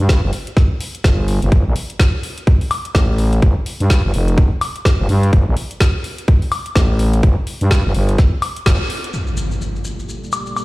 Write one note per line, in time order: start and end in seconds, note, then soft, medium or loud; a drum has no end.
0.00 0.21 G2 medium
0.09 kick loud
0.09 snare loud
0.09 closed hi-hat medium
0.23 0.31 G1 loud
0.33 open hi-hat loud
0.47 closed hi-hat medium
0.57 kick loud
0.57 snare soft
0.57 closed hi-hat soft
0.80 open hi-hat loud
0.95 closed hi-hat medium
1.04 1.40 G1 medium
1.04 kick loud
1.04 snare loud
1.04 closed hi-hat medium
1.28 open hi-hat loud
1.42 1.50 G1 loud
1.42 closed hi-hat medium
1.52 1.64 G1 loud
1.52 kick loud
1.52 closed hi-hat medium
1.66 1.74 A#1 loud
1.76 open hi-hat loud
1.90 closed hi-hat medium
1.99 kick loud
1.99 snare loud
1.99 closed hi-hat medium
2.23 open hi-hat loud
2.38 closed hi-hat medium
2.47 kick loud
2.47 closed hi-hat soft
2.61 open hi-hat medium
2.71 open hi-hat loud
2.71 high woodblock medium
2.85 closed hi-hat medium
2.95 3.41 A1 loud
2.95 kick loud
2.95 snare loud
2.95 closed hi-hat soft
2.95 high woodblock medium
3.18 open hi-hat loud
3.33 closed hi-hat medium
3.42 3.54 G1 loud
3.42 kick loud
3.42 closed hi-hat medium
3.66 open hi-hat loud
3.80 4.02 G2 medium
3.80 closed hi-hat medium
3.90 kick loud
3.90 snare loud
3.90 closed hi-hat medium
4.04 4.12 G1 medium
4.14 4.50 F1 loud
4.14 open hi-hat loud
4.28 closed hi-hat medium
4.38 kick loud
4.38 closed hi-hat medium
4.61 open hi-hat loud
4.61 high woodblock medium
4.76 closed hi-hat medium
4.85 kick loud
4.85 snare loud
4.85 closed hi-hat medium
4.85 high woodblock medium
4.99 5.07 G1 loud
5.09 5.31 G2 loud
5.09 open hi-hat loud
5.23 closed hi-hat medium
5.33 5.45 G1 loud
5.33 kick loud
5.33 closed hi-hat medium
5.47 5.55 A#1 loud
5.57 open hi-hat loud
5.71 closed hi-hat medium
5.80 kick loud
5.80 snare loud
5.80 closed hi-hat medium
6.04 open hi-hat loud
6.18 closed hi-hat medium
6.28 kick loud
6.28 closed hi-hat medium
6.42 open hi-hat medium
6.52 open hi-hat loud
6.52 high woodblock medium
6.66 closed hi-hat medium
6.75 7.22 A1 loud
6.75 kick loud
6.75 snare loud
6.75 closed hi-hat medium
6.75 high woodblock medium
6.99 open hi-hat loud
7.13 closed hi-hat medium
7.23 7.35 G1 loud
7.23 kick loud
7.23 closed hi-hat medium
7.47 open hi-hat loud
7.61 7.83 G2 medium
7.61 closed hi-hat medium
7.71 kick loud
7.71 snare loud
7.71 closed hi-hat medium
7.85 7.93 G1 loud
7.95 8.17 G1 loud
7.95 open hi-hat loud
8.09 closed hi-hat medium
8.18 kick loud
8.18 snare soft
8.18 closed hi-hat medium
8.42 open hi-hat loud
8.42 high woodblock medium
8.56 closed hi-hat medium
8.66 8.78 G1 loud
8.66 kick loud
8.66 snare loud
8.66 closed hi-hat medium
8.66 high woodblock medium
8.90 open hi-hat loud
9.04 closed hi-hat medium
9.13 10.65 A#3 medium
9.13 10.65 G4 medium
9.13 10.65 A4 medium
9.13 10.65 D5 medium
9.13 impact medium
9.13 maracas soft
9.27 maracas soft
9.37 maracas medium
9.51 maracas soft
9.61 maracas soft
9.76 maracas soft
9.84 maracas medium
9.99 maracas soft
10.09 maracas soft
10.24 maracas soft
10.32 high woodblock medium
10.32 maracas medium
10.46 maracas soft
10.56 high woodblock medium
10.56 maracas medium